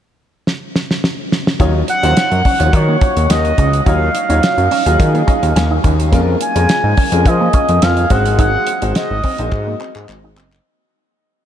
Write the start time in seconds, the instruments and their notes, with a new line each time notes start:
0.47 snare
0.76 snare
0.91 snare
1.04 snare
1.32 snare
1.47 snare
1.59 analog synth bass D#2, grand piano F#3 D#4 F4 C#5, clean electric guitar D#4, kick, closed hi-hat
1.88 analog synth lead F#5, muted clean electric guitar stroke, closed hi-hat
2.03 analog synth bass D#2, grand piano F#3 D#4 F4 C5, clean electric guitar C#4, closed hi-hat
2.17 snare, closed hi-hat
2.32 analog synth bass F#2, closed hi-hat
2.45 clean electric guitar C#4, kick, open hi-hat
2.59 analog synth bass D#2, grand piano F3 D#4 F4 C#5, closed hi-hat
2.65 grand piano F#3
2.73 analog synth bass D#3, analog synth lead C#5, muted clean electric guitar stroke, kick, closed hi-hat
2.88 clean electric guitar A#3
3.01 clean electric guitar C#4, kick, closed hi-hat
3.17 analog synth bass D#2, closed hi-hat
3.30 analog synth bass D#2, analog synth lead D#5, snare, closed hi-hat
3.45 closed hi-hat
3.58 analog synth bass C#2, clean electric guitar C#4, kick, closed hi-hat
3.73 closed hi-hat
3.86 analog synth bass D#2, grand piano F#3 D#4 F4 C#5, clean electric guitar D#4, analog synth lead F5, kick, closed hi-hat
4.14 muted clean electric guitar stroke, closed hi-hat
4.29 analog synth bass D#2, grand piano F#3 D#4 F4 C#5, clean electric guitar C#4, closed hi-hat
4.43 snare, closed hi-hat
4.58 analog synth bass F#2, closed hi-hat
4.71 clean electric guitar C#4, open hi-hat
4.86 analog synth bass D#2, grand piano F#3 D#4 F4 G#4, closed hi-hat
4.99 analog synth bass D#3, muted clean electric guitar stroke, kick, closed hi-hat
5.14 clean electric guitar A#3, closed hi-hat
5.27 clean electric guitar C#4, grand piano D#5, kick, closed hi-hat
5.43 analog synth bass D#2, closed hi-hat
5.56 analog synth bass D#2, grand piano G#5, muted clean electric guitar stroke, snare, closed hi-hat
5.71 clean electric guitar D#4
5.84 analog synth bass D#2, clean electric guitar C#4, kick, closed hi-hat
6.00 closed hi-hat
6.12 analog synth bass F2, grand piano G#3 C#4 F4 A#4, clean electric guitar A#3, kick, closed hi-hat
6.41 analog synth lead G#5, muted clean electric guitar stroke, closed hi-hat
6.55 analog synth bass F2, grand piano G#3 C#4 F4 A#4, clean electric guitar C#4, closed hi-hat
6.69 snare, closed hi-hat
6.84 analog synth bass G#2
6.97 clean electric guitar C#4, kick, open hi-hat
7.12 analog synth bass F2, grand piano G#3 C#4 F4 A#4, closed hi-hat
7.26 analog synth bass F3, analog synth lead D#5, muted clean electric guitar stroke, kick, closed hi-hat
7.40 clean electric guitar A#3
7.53 clean electric guitar C#4, kick, closed hi-hat
7.69 analog synth bass F2, closed hi-hat
7.82 analog synth bass F2, analog synth lead F5, snare, closed hi-hat
7.97 closed hi-hat
8.10 analog synth bass G#1, grand piano G#3 D#4 F#4 C5, clean electric guitar C4, analog synth lead F#5, kick, closed hi-hat
8.26 closed hi-hat
8.39 clean electric guitar D#4, analog synth lead F#5, kick, closed hi-hat
8.67 muted clean electric guitar stroke, closed hi-hat
8.82 analog synth bass G#1, grand piano G#3 D#4 F#4 C5, clean electric guitar C4, closed hi-hat
8.95 analog synth lead D#5, snare, closed hi-hat
9.10 analog synth bass G#1
9.24 clean electric guitar C4, kick, open hi-hat
9.38 analog synth bass A#1, grand piano G#3 D#4 F#4 C5, closed hi-hat
9.52 analog synth bass G#2, muted clean electric guitar stroke, kick, clap
9.67 clean electric guitar A#3
9.81 clean electric guitar C4, clap
9.96 analog synth bass G#2, clap
10.09 analog synth bass G#1, muted clean electric guitar stroke, clap
10.24 clean electric guitar D#4
10.37 analog synth bass F#1, clean electric guitar C4, clap
10.52 clap